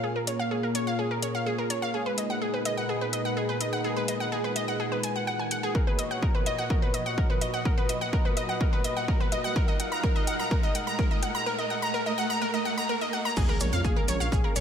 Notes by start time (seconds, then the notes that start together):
Already playing: A#2 A#3 F4 A#4 C#5, riser
0.04 G#4
0.16 A#4
0.27 C#5, closed hi-hat
0.39 F5
0.51 G#4
0.63 A#4
0.75 C#5, closed hi-hat
0.87 F5
0.99 G#4
1.11 A#4
1.22 C#5, closed hi-hat
1.35 F5
1.46 G#4
1.58 A#4
1.70 C#5, closed hi-hat
1.82 F5
1.94 G#3 D#4 G#4 B4
2.06 B4
2.18 D#5, closed hi-hat
2.30 F#5
2.42 G#4
2.54 B4
2.65 D#5, closed hi-hat
2.77 F#5
2.89 G#4
3.01 B4
3.13 D#5, closed hi-hat
3.25 F#5
3.37 G#4
3.49 B4
3.61 D#5, closed hi-hat
3.73 F#5
3.84 G#4
3.96 B4
4.08 D#5, closed hi-hat
4.20 F#5
4.32 G#4
4.44 B4
4.56 D#5, closed hi-hat
4.68 F#5
4.80 G#4
4.92 B4
5.03 G#5, closed hi-hat
5.16 F#5
5.27 F#5
5.39 G#5
5.51 F#5, closed hi-hat
5.63 G#4
5.75 F#4 A#4 C#5 D#5, kick
5.87 B4
5.99 D#5, closed hi-hat
6.11 F#5
6.22 A#4, kick
6.35 B4
6.46 D#5, closed hi-hat
6.58 F#5
6.70 A#4, kick
6.82 B4
6.94 D#5, closed hi-hat
7.06 F#5
7.18 A#4, kick
7.30 B4
7.41 D#5, closed hi-hat
7.54 F#5
7.65 A#4 B4, kick
7.78 B4
7.89 D#5, closed hi-hat
8.01 F#5
8.13 A#4, kick
8.25 B4
8.37 D#5, closed hi-hat
8.49 F#5
8.61 A#4, kick
8.73 B4
8.84 D#5, closed hi-hat
8.97 F#5
9.08 A#4, kick
9.20 B4
9.32 D#5, closed hi-hat
9.44 F#5
9.56 D#4 A#4 F5 F#5, kick
9.68 D#5
9.80 F#5, closed hi-hat
9.92 A#5
10.03 A#4, kick
10.16 D#5
10.27 F#5, closed hi-hat
10.39 A#5
10.51 A#4, kick
10.63 D#5
10.75 F#5, closed hi-hat
10.87 A#5
10.99 A#4, kick
11.11 D#5
11.23 F#5, closed hi-hat
11.35 A#5
11.46 A#4
11.59 D#5
11.70 F#5
11.82 A#5
11.94 A#4
12.06 D#5
12.18 F#5
12.30 A#5
12.42 A#4
12.54 D#5
12.65 F#5
12.78 A#5
12.89 A#4
13.01 D#5
13.13 F#5
13.25 A#5
13.37 A#1 G#3 A#3 C#4 G#4 G#5, kick, crash, impact, maracas
13.49 A#4 A#5
13.60 A#1 C#5 C#6, closed hi-hat, maracas
13.72 F2 F5 F6, maracas
13.84 A#1 G#4 G#5, kick, maracas
13.96 A#4 A#5
14.08 A#1 C#5 C#6, closed hi-hat, maracas
14.20 A#1 F5 F6, maracas
14.32 A#1 G#4 G#5, kick, maracas
14.44 A#4 A#5
14.56 A#1 C#5 C#6, closed hi-hat, maracas